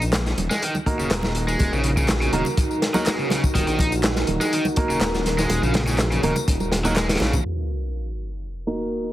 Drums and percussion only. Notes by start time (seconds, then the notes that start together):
0.02 closed hi-hat, tambourine
0.13 snare, clap, closed hi-hat, tambourine
0.26 snare, tambourine
0.38 closed hi-hat, muted conga, low conga
0.51 snare, tambourine
0.62 closed hi-hat, tambourine
0.75 tambourine, muted conga
0.86 kick, closed hi-hat, low conga
0.99 tambourine
1.11 snare, clap, closed hi-hat, tambourine
1.23 snare, tambourine, muted conga
1.35 closed hi-hat
1.48 tambourine
1.59 kick, closed hi-hat, tambourine, muted conga
1.73 tambourine
1.84 closed hi-hat
1.97 kick, tambourine
2.08 snare, clap, closed hi-hat, tambourine, muted conga
2.22 closed hi-hat, tambourine
2.33 closed hi-hat, low conga
2.45 tambourine, muted conga
2.57 kick, closed hi-hat, tambourine
2.71 tambourine
2.82 snare, closed hi-hat
2.94 snare, tambourine, muted conga
3.06 snare, clap, closed hi-hat, tambourine
3.19 tambourine
3.30 snare, closed hi-hat, muted conga
3.44 kick, tambourine
3.55 kick, closed hi-hat, tambourine
3.67 closed hi-hat, tambourine
3.79 kick, closed hi-hat, muted conga
3.92 closed hi-hat, tambourine
4.03 snare, clap, closed hi-hat, tambourine
4.16 snare, tambourine, muted conga
4.27 closed hi-hat, low conga
4.40 snare, tambourine
4.53 closed hi-hat, tambourine
4.65 tambourine, muted conga
4.76 kick, closed hi-hat, low conga
4.90 tambourine
5.01 snare, clap, closed hi-hat, tambourine, muted conga
5.14 snare, tambourine
5.26 snare, closed hi-hat
5.38 snare, tambourine
5.50 closed hi-hat, tambourine, muted conga
5.63 tambourine
5.74 snare, closed hi-hat, high conga
5.87 snare, tambourine, muted conga
5.99 snare, clap, closed hi-hat, tambourine
6.12 closed hi-hat, tambourine
6.23 closed hi-hat, low conga
6.36 tambourine, muted conga
6.48 kick, closed hi-hat, tambourine
6.60 tambourine, high conga
6.72 snare, closed hi-hat, muted conga
6.84 snare, tambourine, high conga
6.96 snare, clap, closed hi-hat, tambourine
7.09 snare, closed hi-hat, tambourine
7.15 snare, closed hi-hat
7.20 snare, closed hi-hat, muted conga
7.33 kick, tambourine, low conga